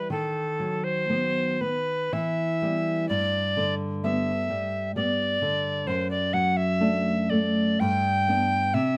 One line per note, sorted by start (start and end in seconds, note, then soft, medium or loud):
0.00 0.11 G3 medium
0.00 0.11 B4 medium
0.10 2.08 D#3 medium
0.10 0.85 A4 loud
0.60 1.08 F#3 medium
0.84 1.62 C5 loud
1.09 1.57 F#3 medium
1.09 1.57 B3 medium
1.61 2.13 B3 medium
1.61 2.15 B4 medium
2.13 3.07 E3 medium
2.13 3.08 E5 loud
2.62 3.06 G3 medium
2.62 3.06 B3 medium
3.09 5.83 G2 medium
3.09 3.75 D5 loud
3.57 4.31 D3 medium
4.04 4.46 G3 medium
4.04 4.46 B3 medium
4.04 4.92 E5 loud
4.50 4.95 G3 medium
4.96 5.38 G3 medium
4.96 5.38 B3 medium
4.96 5.89 D5 loud
5.42 5.87 D3 medium
5.87 7.76 F#2 medium
5.87 6.10 C5 loud
6.11 6.35 D5 loud
6.33 7.10 F#3 medium
6.33 6.58 F#5 loud
6.57 7.31 E5 loud
6.81 7.26 A3 medium
6.81 7.26 D4 medium
7.30 7.81 A3 medium
7.30 7.81 D5 loud
7.80 8.72 G2 loud
7.80 8.75 G5 loud
8.29 8.71 B3 medium
8.29 8.71 D4 medium
8.74 8.97 C3 loud
8.74 8.97 E5 loud